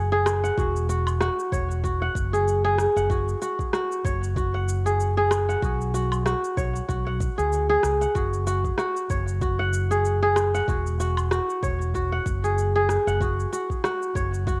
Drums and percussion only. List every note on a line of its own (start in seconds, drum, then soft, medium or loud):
0.26 cross-stick medium
0.26 low woodblock medium
0.26 shaker medium
0.45 shaker soft
0.58 kick loud
0.58 shaker soft
0.76 shaker soft
0.90 shaker medium
1.07 low woodblock medium
1.07 shaker soft
1.21 cross-stick medium
1.21 shaker soft
1.39 shaker soft
1.52 kick loud
1.52 shaker medium
1.71 shaker soft
1.84 kick medium
1.84 shaker soft
2.15 kick loud
2.15 shaker medium
2.34 shaker soft
2.48 shaker soft
2.78 cross-stick medium
2.78 shaker medium
2.97 shaker soft
3.10 kick loud
3.10 shaker soft
3.29 shaker soft
3.42 shaker medium
3.59 kick medium
3.59 shaker soft
3.73 cross-stick medium
3.73 shaker soft
3.92 shaker soft
4.05 kick loud
4.05 shaker medium
4.23 shaker soft
4.36 kick loud
4.36 shaker soft
4.69 shaker medium
4.87 shaker soft
5.00 shaker soft
5.31 cross-stick medium
5.31 low woodblock medium
5.31 shaker medium
5.50 shaker soft
5.62 kick loud
5.62 shaker soft
5.81 shaker soft
5.95 shaker medium
6.12 low woodblock medium
6.12 shaker soft
6.26 cross-stick medium
6.26 shaker soft
6.44 shaker soft
6.57 kick loud
6.57 shaker medium
6.76 shaker soft
6.89 kick medium
6.89 shaker soft
7.20 kick loud
7.20 shaker medium
7.39 shaker soft
7.53 shaker soft
7.83 cross-stick medium
7.83 shaker medium
8.02 shaker soft
8.15 kick loud
8.15 shaker soft
8.33 shaker soft
8.47 shaker medium
8.65 kick medium
8.65 shaker soft
8.78 cross-stick medium
8.78 shaker soft
8.97 shaker soft
9.10 kick loud
9.10 shaker medium
9.28 shaker soft
9.42 kick loud
9.42 shaker soft
9.74 shaker medium
9.92 shaker soft
10.05 shaker soft
10.36 cross-stick medium
10.36 low woodblock medium
10.36 shaker medium
10.55 shaker soft
10.68 kick loud
10.68 shaker soft
10.87 shaker soft
11.00 shaker medium
11.17 low woodblock medium
11.17 shaker soft
11.31 cross-stick medium
11.31 shaker soft
11.50 shaker soft
11.63 kick loud
11.63 shaker medium
11.81 shaker soft
11.94 kick medium
11.94 shaker soft
12.26 kick loud
12.26 shaker medium
12.44 shaker soft
12.58 shaker soft
12.89 cross-stick medium
12.89 shaker medium
13.08 shaker soft
13.21 kick loud
13.21 shaker soft
13.40 shaker soft
13.53 shaker medium
13.70 kick medium
13.70 shaker soft
13.84 cross-stick medium
13.84 shaker soft
14.02 shaker soft
14.15 kick loud
14.15 shaker medium
14.34 shaker soft
14.47 kick loud
14.47 shaker soft